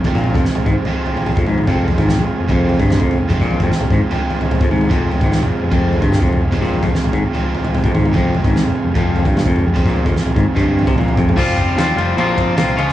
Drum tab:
CC |----------------|----------------|----------------|----------------|
RD |----------------|----------------|----------------|----------------|
SD |----o-----------|----o-------o---|----o-----------|----o-------o---|
T2 |-----o------o-oo|-----o------o---|-----o------o-oo|-----o------o---|
FT |o-oo-o--o-ooooo-|o-oo----o-ooooo-|o-oo-o--o-ooooo-|o-oo----o-ooooo-|
BD |oo-o--o------o--|o--o----o--o-o--|oo-o--o------o--|o--o----o--o-o--|

CC |----------------|----------------|----------------|x---------------|
RD |----------------|----------------|----------------|--x-x-x-x-x-x-x-|
SD |----o-----------|----o-------o---|----o-----------|----o-------o--o|
T2 |-----o------o-oo|-----o------o---|-----o------o-oo|----------------|
FT |o-oo-o--o-ooooo-|o-oo----o-ooooo-|o-oo-o--o-ooooo-|----------------|
BD |oo-o--o------o--|o--o----o--o-o--|oo-o--o-o--o--o-|o-o-------o-----|